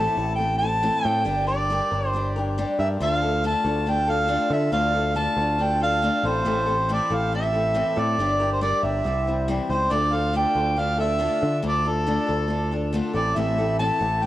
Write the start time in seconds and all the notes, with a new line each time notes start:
Already playing: A2 E3 A3 C4 A5
0.00 E4 A4
0.17 A1 A3 C4 E4 A4
0.35 A3 G5
0.40 C4 E4 A4
0.58 A4 A5
0.62 A3 C4 E4
0.83 A2 E3 A3 C4 E4 A4
1.05 A2 A3 C4 E4 A4 G5
1.25 G1 G3 D4 G4 A#4 G5
1.47 D4 G4 A#4 D5
1.70 G3 D4 G4 A#4
1.91 G1 D4 G4 A#4
2.08 C5
2.13 G3 D4 G4 A#4
2.36 D4 G4 A#4
2.58 G3 D4 G4 A#4
2.78 G2 D4 G4 A#4 E5
3.00 D2 D3 A3 D4 F4 A4 F5
3.22 D4 F4 A4
3.44 D3 A3 D4 F4 A4 A5
3.64 D2 D4 F4 A4
3.86 A3 D4 F4 A4 G5
4.08 D4 F4 A4 F5
4.28 D3 A3 D4 F4 A4
4.50 D3 D4 F4 A4 E5
4.72 D2 D3 A3 D4 F4 A4 F5
4.94 D4 F4 A4
5.15 D3 A3 D4 F4 A4 A5
5.37 D2 D4 F4 A4
5.58 A3 D4 F4 A4
5.63 G5
5.80 D4 F4 A4 F5
6.02 D3 A3 D4 F4 A4
6.23 A1 A3 C4 E4 A4 C5
6.45 A1 A2 E3 A3 C4 E4 A4
6.66 A3 C4 E4 A4
6.89 A2 E3 A3 C4 E4 A4
6.93 D5
7.10 A1 A3 C4 E4 A4
7.15 F5
7.32 A3 C4 E4 A4 E5
7.53 A3 C4 E4 A4
7.74 A2 E3 A3 C4 E4 A4
7.96 A2 A3 C4 E4 A4 D5
8.18 G1 G3 D4 G4 A#4
8.40 D4 G4 A#4
8.53 C5
8.61 G3 D4 G4 A#4 D5
8.83 G1 D4 G4 A#4 E5
9.04 C2 G3 C4 E4 C5
9.27 G3 C4 E4 C5
9.48 C3 E3 G3 C4 E4 C5
9.69 C#2 G3 C4 E4 C5
9.90 D2 D3 A3 D4 F4 A4 D5
10.13 D4 F4 A4 F5
10.33 D3 A3 D4 F4 A4 G5
10.55 D2 D4 F4 A4
10.77 A3 D4 F4 A4 F5
10.98 D4 F4 A4 E5
11.18 D3 A3 D4 F4 A4
11.41 D3 D4 F4 A4
11.62 D2 D3 A3 D4 F4 A4
11.67 D5
11.85 D4 F4 A4
12.07 D3 A3 D4 F4 A4
12.27 D2 D4 F4 A4
12.48 A3 D4 F4 A4
12.71 D4 F4 A4
12.93 D3 A3 D4 F4 A4
13.13 A1 A3 C4 E4 A4 D5
13.36 A1 A2 E3 A3 C4 E4 A4 E5
13.58 A3 C4 E4 A4
13.79 A2 E3 A3 C4 E4 A4 A5
13.99 A1 A3 C4 E4 A4
14.22 A3 C4